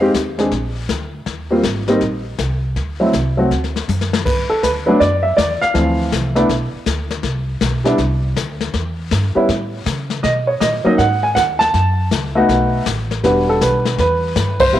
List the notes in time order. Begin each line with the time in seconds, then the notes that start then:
Already playing: F2 F5
0.01 G#3 C4 D#4 G4
0.14 D#2, kick, snare, hi-hat pedal
0.38 G#3 C4 D4 G#4, snare
0.51 A#1, brush sweep, kick, snare
0.89 D2, kick, snare, hi-hat pedal
1.26 D#2, brush sweep, kick, snare
1.50 G3 A#3 C4 F4
1.63 G#1, kick, snare, hi-hat pedal
1.88 G3 A#3 C4 D#4, snare
2.01 A#1, brush sweep, kick, snare
2.38 C2, kick, snare, hi-hat pedal
2.76 D2, brush sweep, kick, snare
3.00 F#3 A3 C4 E4
3.13 C2, kick, snare, hi-hat pedal
3.37 F#3 A3 C4 F#4
3.51 D2, brush sweep, kick, snare
3.64 snare
3.76 snare
3.88 F#2, hi-hat pedal, high tom
4.01 snare
4.13 snare
4.25 G2 B4, brush sweep, kick, snare, crash
4.50 A4, muted upright bass stroke
4.63 D2 B4, kick, snare, hi-hat pedal
4.86 F#3 A3 B3 D4 B4
5.00 F#2 D5, brush sweep, kick, snare
5.23 E5
5.37 E2 D5, kick, snare, hi-hat pedal
5.61 F5, muted upright bass stroke, snare
5.74 D2 E3 F3 A3 C4, brush sweep, kick, snare
6.12 C2, kick, snare, hi-hat pedal
6.35 A3 B3 D4 E4, snare
6.49 B1, brush sweep, kick, snare
6.74 muted upright bass stroke
6.86 D2, kick, snare, hi-hat pedal
7.11 snare
7.23 C2, brush sweep, kick, snare
7.61 B1, kick, snare, hi-hat pedal
7.84 G3 B3 D4 E4, snare
7.98 C2, brush sweep, kick, snare
8.36 D2, kick, snare, hi-hat pedal
8.61 snare
8.74 E2, brush sweep, kick, snare
9.11 G2, kick, snare, hi-hat pedal
9.35 G3 B3 C#4 E4, muted upright bass stroke
9.49 A2, brush sweep, kick, snare
9.86 C#3, kick, snare, hi-hat pedal
10.10 snare
10.23 B2 D#5, brush sweep, kick, snare
10.47 C#5
10.60 A#2 D#5, kick, snare, hi-hat pedal
10.84 F#3 A#3 C#4 D#4 D#5, muted upright bass stroke
10.98 G#2 F#5, brush sweep, kick, snare
11.23 G#5
11.35 D#2 F#5, kick, snare, hi-hat pedal
11.59 A5, snare
11.74 F#2, brush sweep, kick, snare
12.11 C#2, kick, snare, hi-hat pedal
12.35 A3 B3 D#4 F#4
12.49 B1, brush sweep, kick, snare
12.86 A1, kick, snare, hi-hat pedal
13.11 snare
13.23 E1 G3 B3 D4 F#4 B4, brush sweep, kick, snare
13.49 A4
13.61 B1 B4, kick, snare, hi-hat pedal
13.85 snare
13.98 E2 B4, brush sweep, kick, snare
14.36 G2, kick, snare, hi-hat pedal
14.60 C5, kick, ride
14.73 A2 G3 B3 C4 E4